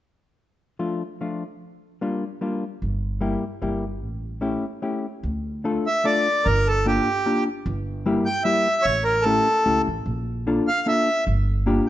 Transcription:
0.79 F3 A3 D4 F4
1.21 F3 A3 D4 F4
2.01 G3 A#3 D4 F4
2.41 G3 A#3 D4 F4
2.82 G1
3.21 G3 A#3 E4 G4
3.62 G1 G3 A#3 E4 G4
4.02 A1
4.41 A3 C#4 E4 G4
4.82 A3 C#4 E4 G4
5.23 D2
5.64 A3 D4 F4 A4
5.87 E5
6.04 A3 D4 F4 A4 D5
6.45 G1 A#4
6.68 A4
6.86 A#3 D4 F4 G4
7.26 A#3 D4 F4 G4
7.66 G1
8.06 G3 A#3 E4 G4
8.26 G5
8.44 G3 A#3 E4 G4 E5
8.82 A1 C#5
9.04 A#4
9.22 A3 C#4 G4 A4
9.26 E4
9.66 C#2 A3 C#4 E4 G4
9.87 A1
10.06 A#1
10.47 A#3 D4 F4 A4
10.68 F5
10.86 A#3 D4 F4 A4 E5
11.27 G1
11.66 A#3 D4 F4 G4

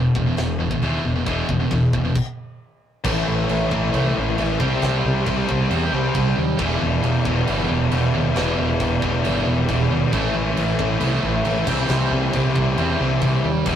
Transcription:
Already playing: E2 B2
0.15 E1 E2 B2, kick
0.26 E2 B2
0.37 E1 E2 B2, snare, china
0.59 E2 B2
0.70 E2 B2, kick
0.82 D#2 E2 B2 E3, china
1.04 E1 E2 B2
1.15 E2 B2
1.26 E1 E2 B2 E3, kick, china
1.49 E1 E2 B2, kick
1.60 E2 B2
1.71 E1 E2 B2, kick, china
1.93 E1 E2 B2, kick
2.05 E2 B2
2.15 kick, crash
3.04 A1 A2 E3 A3, kick, crash
3.12 A2 E3
3.19 A2 E3
3.26 A1 A2 E3
3.35 A2 E3
3.43 A2 E3
3.49 A1 A2 E3, crash
3.58 A2 E3
3.66 A2 E3 A3
3.71 A1 A2 E3, kick
3.83 A2 E3
3.90 C2 A2 E3 A3, crash
3.97 A2 E3
4.05 A2 E3
4.13 A2 E3
4.17 A1 A2 E3
4.28 A2 E3
4.36 A1 A2 E3 A3, crash
4.44 A2 E3
4.51 A2 E3
4.59 C2 C3 G3 C4, kick
4.68 C3 G3
4.75 C3 G3
4.82 C2 C3 G3 C4, snare, crash
4.90 C3 G3
4.98 C3 G3
5.05 C2 C3 G3
5.13 C3 G3
5.21 C3 G3
5.26 C2 C3 G3 C4, kick, crash
5.30 G3
5.37 C3 G3
5.45 C2 C3 G3, kick
5.53 C3 G3
5.60 C3 G3
5.67 E2 C3 G3 C4, crash
5.76 C3 G3
5.84 C3 G3
5.91 C2 C3 G3 C4
5.99 C3 G3
6.06 C3 G3
6.14 C2 C3 G3, kick, crash
6.21 C3 G3
6.29 C3 G3
6.36 D#2 C3 G3
6.57 E1 E2 B2 E3 G3, kick, crash
6.67 E3 G3
6.75 E3 G3
6.80 E1 E2 B2 E3 G3
6.90 E3 G3
6.97 E3 G3
7.02 E1 E2 B2 E3 G3, crash
7.13 E3 G3
7.20 E3 G3
7.25 E1 E2 B2 E3, kick
7.29 G3
7.36 E3 G3
7.44 E2 B2 E3 G3, crash
7.48 G1 E3 G3
7.59 E3 G3
7.66 E1 E2 B2 E3 G3
7.73 E3 G3
7.81 E3 G3
7.89 E1 E2 B2 E3 G3, crash
7.93 B2 E3 G3
8.04 E3 G3
8.12 D#2 E2 B2 E3 G3
8.20 E3 G3
8.27 E3 G3
8.35 E1 E2 B2 E3 G3, snare, crash
8.44 E3 G3
8.51 E3 G3
8.58 E1 E2 B2 E3 G3
8.66 E3 G3
8.75 E3 G3
8.80 E1 E2 B2 E3 G3, kick, crash
8.89 E3 G3
8.98 E3 G3
9.02 E1 E2 B2 E3, kick
9.06 G3
9.12 E3 G3
9.20 E2 E3 G3
9.25 G1 B2 E3 G3, crash
9.35 E3 G3
9.43 E1 E2 E3 G3
9.47 B2 E3
9.51 G3
9.57 E3 G3
9.65 E1 E2 B2 E3 G3, kick, crash
9.70 B2 E3
9.74 G3
9.81 E3 G3
9.89 D#2 E2 B2 E3 G3
9.96 E3 G3
10.04 E3 G3
10.12 A1 A2 E3 A3, kick, crash
10.20 A2 E3
10.28 A2 E3
10.34 A1 A2 E3
10.43 A2 E3
10.51 A2 E3
10.56 A1 A2 E3, crash
10.66 A2 E3
10.73 A2 E3
10.79 A1 A2 E3 A3, kick
10.89 A2 E3
10.97 C2 A2 E3 A3, crash
11.05 A2 E3
11.13 A2 E3
11.20 A1 A2 E3
11.27 A2 E3
11.36 A2 E3
11.43 A1 A2 E3, crash
11.48 A2 E3 A3
11.59 A2 E3
11.67 C2 C3 E3 G3 C4, kick, crash
11.74 C3 E3
11.82 C3 E3
11.89 C2 C3 E3 G3 C4, snare, crash
11.98 C3 E3
12.05 C3 E3
12.11 C2 C3 E3 G3
12.21 C3 E3
12.28 C3 E3
12.33 C2 C3 G3 C4, kick, crash
12.38 E3
12.43 C3 E3
12.51 C3 E3
12.56 C2 E3 G3, kick
12.60 C3
12.67 C3 E3
12.75 E2 C3 E3 G3 C4, crash
12.82 C3 E3
12.90 C3 E3
12.97 C2 C3 E3 G3 C4
13.02 C3 E3 G3
13.13 C3 E3
13.20 C2 C3 E3 G3, kick, crash
13.28 C3 E3
13.37 C3 E3
13.44 D#2 C3 G3
13.66 E1 E2 B2 E3 G3, kick, crash

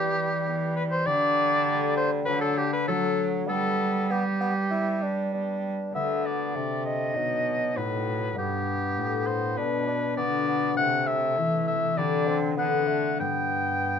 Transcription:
Already playing: E3 G3 B3 G4
0.48 B3 G4
0.76 B4
0.91 C5
1.06 D3 G3 D5
1.67 A3 G4
1.97 C5
2.25 D3 F#3 B4
2.41 A4
2.57 G4
2.73 B4
2.88 F#3 A3 F#4 A4
3.48 G3 B3 A4
4.10 B3 G4
4.41 B3
4.71 B3 E4
5.03 D4
5.34 B3 D4 G4
5.91 D3 A3 F#4
5.95 B3 E5
6.26 D5
6.55 C3 A3
6.85 D#5
7.13 B2 F#3 D#4 F#4
7.73 A2 F#3 D#4 F#4 B4
8.33 G2 G3 D4 G4
8.37 G2 B3 G4
8.97 A2
9.27 C5
9.54 B2 B3 D4 F#4 B4
9.58 D4
9.88 D4
10.14 D3 B3 D4 F#4 D5
10.48 B3
10.75 C3 A3 C4 E4 F#5
11.07 E5
11.37 E3
11.67 E5
11.95 D3 G3 C4 A4 D5
12.28 C4
12.55 D3 B3 C4 D4 A4
12.59 F#5
12.88 A3
13.16 B3 D4 G4 G5
13.20 G2

